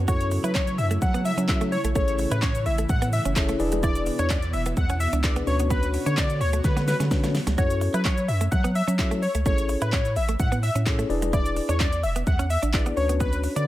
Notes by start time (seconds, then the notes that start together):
0.08 F#2 C#3 F#3 A3 C#4 E4 F#4 A4 C#5, kick, shaker
0.21 closed hi-hat, shaker
0.31 muted clean electric guitar stroke, open hi-hat, shaker
0.44 F#3 E4 B4, closed hi-hat, shaker
0.55 C#4 C#5, kick, clap, shaker
0.67 closed hi-hat, shaker
0.78 F#2 E5, muted clean electric guitar stroke, open hi-hat, shaker
0.91 A3, closed hi-hat, shaker
1.02 F#3 F#5, kick, shaker
1.14 B3, closed hi-hat, shaker
1.25 E5, muted clean electric guitar stroke, open hi-hat, shaker
1.37 F#3 C#4, closed hi-hat, shaker
1.48 C#4 E4 F#4 A4 C#5 E5, kick, clap, shaker
1.61 A3, closed hi-hat, shaker
1.72 C#5, muted clean electric guitar stroke, open hi-hat, shaker
1.84 A#1 A3, closed hi-hat, shaker
1.95 A1 E3 A3 C#4 E4 G#4 A4 C#5, kick, shaker
2.08 closed hi-hat, shaker
2.18 muted clean electric guitar stroke, open hi-hat, shaker
2.31 A2 E4 B4, closed hi-hat, shaker
2.42 C#4 C#5, kick, clap, shaker
2.55 closed hi-hat, shaker
2.66 A1 E5, muted clean electric guitar stroke, open hi-hat, shaker
2.78 A3, closed hi-hat, shaker
2.89 A2 F#5, kick, shaker
3.02 B3, closed hi-hat, shaker
3.13 E5, muted clean electric guitar stroke, open hi-hat, shaker
3.25 F#1 C#4, closed hi-hat, shaker
3.36 C#4 E4 G#4 A4 C#5, kick, clap, shaker
3.49 A3, closed hi-hat, shaker
3.59 E1 B2 B3 D4 E4 G#4 B4 D5, muted clean electric guitar stroke, open hi-hat, shaker
3.72 G#3, closed hi-hat, shaker
3.83 E4 D5, kick, shaker
3.95 closed hi-hat, shaker
4.06 muted clean electric guitar stroke, open hi-hat, shaker
4.19 E2 D4 C#5, closed hi-hat, shaker
4.30 C#4 D5, kick, clap, shaker
4.42 closed hi-hat, shaker
4.53 E1 E5, muted clean electric guitar stroke, open hi-hat, shaker
4.66 B3, closed hi-hat, shaker
4.77 E2 F#5, kick, shaker
4.90 C#4, closed hi-hat, shaker
5.00 E5, muted clean electric guitar stroke, open hi-hat, shaker
5.13 C#2 D4, closed hi-hat, shaker
5.23 D4 E4 G#4 B4 D5, kick, clap, shaker
5.36 B3, closed hi-hat, shaker
5.47 D2 C#4 D4 F#4 B4 C#5, muted clean electric guitar stroke, open hi-hat, shaker
5.60 B3, closed hi-hat, shaker
5.70 B3 B4, kick, shaker
5.83 closed hi-hat, shaker
5.94 muted clean electric guitar stroke, open hi-hat, shaker
6.06 D3 D4 C#5, closed hi-hat, shaker
6.17 C#4 D5, kick, clap, shaker
6.30 closed hi-hat, shaker
6.41 D2 C#5, muted clean electric guitar stroke, open hi-hat, shaker
6.53 A3, closed hi-hat, shaker
6.64 D3 B4, kick, snare, shaker
6.77 B3, snare, closed hi-hat, shaker
6.88 B4, muted clean electric guitar stroke, snare, open hi-hat, shaker
7.00 D3 C#4, snare, closed hi-hat, shaker
7.11 C#4 D4 F#4 B4 C#5, kick, snare, shaker
7.24 A3, snare, closed hi-hat, shaker
7.35 muted clean electric guitar stroke, snare, open hi-hat, shaker
7.47 C#2 A3, snare, closed hi-hat, shaker
7.58 F#2 C#4 E4 F#4 A4 C#5, kick, shaker
7.70 closed hi-hat, shaker
7.81 muted clean electric guitar stroke, open hi-hat, shaker
7.94 F#3 E4 B4, closed hi-hat, shaker
8.04 C#4 C#5, kick, clap, shaker
8.18 closed hi-hat, shaker
8.28 F#2 E5, muted clean electric guitar stroke, open hi-hat, shaker
8.41 A3, closed hi-hat, shaker
8.51 F#3 F#5, kick, shaker
8.64 B3, closed hi-hat, shaker
8.75 E5, muted clean electric guitar stroke, open hi-hat, shaker
8.88 F#3 C#4, closed hi-hat, shaker
8.99 C#4 E4 F#4 A4 C#5 E5, kick, clap, shaker
9.11 A3, closed hi-hat, shaker
9.22 C#5, muted clean electric guitar stroke, open hi-hat, shaker
9.35 C#2 A3, closed hi-hat, shaker
9.46 A1 A3 C#4 E4 G#4 A4 C#5, kick, shaker
9.58 closed hi-hat, shaker
9.69 muted clean electric guitar stroke, open hi-hat, shaker
9.82 A2 E4 B4, closed hi-hat, shaker
9.93 C#4 C#5, kick, clap, shaker
10.05 closed hi-hat, shaker
10.16 A1 E5, muted clean electric guitar stroke, open hi-hat, shaker
10.29 A3, closed hi-hat, shaker
10.39 A2 F#5, kick, shaker
10.52 B3, closed hi-hat, shaker
10.63 E5, muted clean electric guitar stroke, open hi-hat, shaker
10.75 A2 C#4, closed hi-hat, shaker
10.86 C#4 E4 G#4 A4 C#5, kick, clap, shaker
10.99 A3, closed hi-hat, shaker
11.09 E1 D4 E4 G#4 B4 D5, muted clean electric guitar stroke, open hi-hat, shaker
11.22 G#3, closed hi-hat, shaker
11.33 E4 D5, kick, shaker
11.46 closed hi-hat, shaker
11.56 muted clean electric guitar stroke, open hi-hat, shaker
11.69 E2 D4 C#5, closed hi-hat, shaker
11.80 C#4 D5, kick, clap, shaker
11.93 closed hi-hat, shaker
12.03 E1 E5, muted clean electric guitar stroke, open hi-hat, shaker
12.16 B3, closed hi-hat, shaker
12.27 E2 F#5, kick, shaker
12.39 C#4, closed hi-hat, shaker
12.50 E5, muted clean electric guitar stroke, open hi-hat, shaker
12.63 A1 D4, closed hi-hat, shaker
12.73 D4 E4 G#4 B4 D5, kick, clap, shaker
12.86 B3, closed hi-hat, shaker
12.97 D2 C#4 D4 F#4 B4 C#5, muted clean electric guitar stroke, open hi-hat, shaker
13.09 B3, closed hi-hat, shaker
13.20 B3 B4, kick, shaker
13.33 closed hi-hat, shaker
13.43 muted clean electric guitar stroke, open hi-hat, shaker
13.56 D3 D4 D5, closed hi-hat, shaker